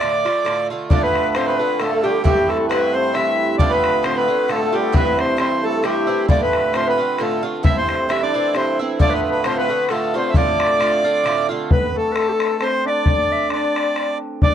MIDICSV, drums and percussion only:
0, 0, Header, 1, 2, 480
1, 0, Start_track
1, 0, Tempo, 448430
1, 971, Time_signature, 3, 2, 24, 8
1, 7692, Tempo, 451807
1, 15510, End_track
2, 0, Start_track
2, 0, Title_t, "Bodhran"
2, 13, Note_on_c, 9, 64, 63
2, 120, Note_off_c, 9, 64, 0
2, 278, Note_on_c, 9, 64, 50
2, 385, Note_off_c, 9, 64, 0
2, 495, Note_on_c, 9, 64, 61
2, 602, Note_off_c, 9, 64, 0
2, 968, Note_on_c, 9, 64, 88
2, 1075, Note_off_c, 9, 64, 0
2, 1236, Note_on_c, 9, 64, 50
2, 1343, Note_off_c, 9, 64, 0
2, 1443, Note_on_c, 9, 64, 77
2, 1550, Note_off_c, 9, 64, 0
2, 1922, Note_on_c, 9, 64, 58
2, 2029, Note_off_c, 9, 64, 0
2, 2410, Note_on_c, 9, 64, 77
2, 2517, Note_off_c, 9, 64, 0
2, 2678, Note_on_c, 9, 64, 46
2, 2785, Note_off_c, 9, 64, 0
2, 2899, Note_on_c, 9, 64, 69
2, 3006, Note_off_c, 9, 64, 0
2, 3371, Note_on_c, 9, 64, 56
2, 3478, Note_off_c, 9, 64, 0
2, 3846, Note_on_c, 9, 64, 74
2, 3953, Note_off_c, 9, 64, 0
2, 4108, Note_on_c, 9, 64, 58
2, 4215, Note_off_c, 9, 64, 0
2, 4327, Note_on_c, 9, 64, 70
2, 4434, Note_off_c, 9, 64, 0
2, 4811, Note_on_c, 9, 64, 57
2, 4918, Note_off_c, 9, 64, 0
2, 5291, Note_on_c, 9, 64, 80
2, 5398, Note_off_c, 9, 64, 0
2, 5553, Note_on_c, 9, 64, 53
2, 5660, Note_off_c, 9, 64, 0
2, 5762, Note_on_c, 9, 64, 72
2, 5869, Note_off_c, 9, 64, 0
2, 6248, Note_on_c, 9, 64, 59
2, 6355, Note_off_c, 9, 64, 0
2, 6731, Note_on_c, 9, 64, 81
2, 6838, Note_off_c, 9, 64, 0
2, 6993, Note_on_c, 9, 64, 59
2, 7100, Note_off_c, 9, 64, 0
2, 7215, Note_on_c, 9, 64, 70
2, 7322, Note_off_c, 9, 64, 0
2, 7691, Note_on_c, 9, 64, 61
2, 7797, Note_off_c, 9, 64, 0
2, 8180, Note_on_c, 9, 64, 90
2, 8286, Note_off_c, 9, 64, 0
2, 8437, Note_on_c, 9, 64, 60
2, 8544, Note_off_c, 9, 64, 0
2, 8663, Note_on_c, 9, 64, 73
2, 8770, Note_off_c, 9, 64, 0
2, 9137, Note_on_c, 9, 64, 61
2, 9243, Note_off_c, 9, 64, 0
2, 9618, Note_on_c, 9, 64, 78
2, 9724, Note_off_c, 9, 64, 0
2, 10090, Note_on_c, 9, 64, 72
2, 10196, Note_off_c, 9, 64, 0
2, 10562, Note_on_c, 9, 64, 57
2, 10668, Note_off_c, 9, 64, 0
2, 11045, Note_on_c, 9, 64, 90
2, 11151, Note_off_c, 9, 64, 0
2, 11318, Note_on_c, 9, 64, 73
2, 11425, Note_off_c, 9, 64, 0
2, 11538, Note_on_c, 9, 64, 75
2, 11645, Note_off_c, 9, 64, 0
2, 12017, Note_on_c, 9, 64, 64
2, 12123, Note_off_c, 9, 64, 0
2, 12496, Note_on_c, 9, 64, 95
2, 12602, Note_off_c, 9, 64, 0
2, 12973, Note_on_c, 9, 64, 71
2, 13079, Note_off_c, 9, 64, 0
2, 13233, Note_on_c, 9, 64, 70
2, 13340, Note_off_c, 9, 64, 0
2, 13451, Note_on_c, 9, 64, 63
2, 13557, Note_off_c, 9, 64, 0
2, 13930, Note_on_c, 9, 64, 74
2, 14036, Note_off_c, 9, 64, 0
2, 14404, Note_on_c, 9, 64, 60
2, 14510, Note_off_c, 9, 64, 0
2, 14679, Note_on_c, 9, 64, 57
2, 14785, Note_off_c, 9, 64, 0
2, 14890, Note_on_c, 9, 64, 58
2, 14997, Note_off_c, 9, 64, 0
2, 15375, Note_on_c, 9, 64, 80
2, 15481, Note_off_c, 9, 64, 0
2, 15510, End_track
0, 0, End_of_file